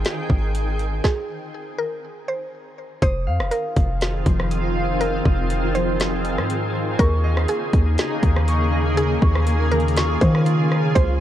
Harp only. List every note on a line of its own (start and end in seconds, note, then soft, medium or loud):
3.02 4.49 D#6 loud
3.27 4.75 F5 medium
4.26 5.74 F3 medium
4.51 5.25 D#6 medium
4.75 6.42 F5 medium
5.25 5.99 D#6 medium
5.75 7.04 F3 medium
6.00 7.17 D#6 loud
6.99 8.47 C#6 loud
7.24 8.72 D#5 medium
8.23 9.71 D#3 medium
8.48 9.22 C#6 loud
8.72 10.51 D#5 loud
9.22 9.96 C#6 medium
9.72 11.01 D#3 medium
9.97 11.01 C#6 loud
10.95 11.20 C6 loud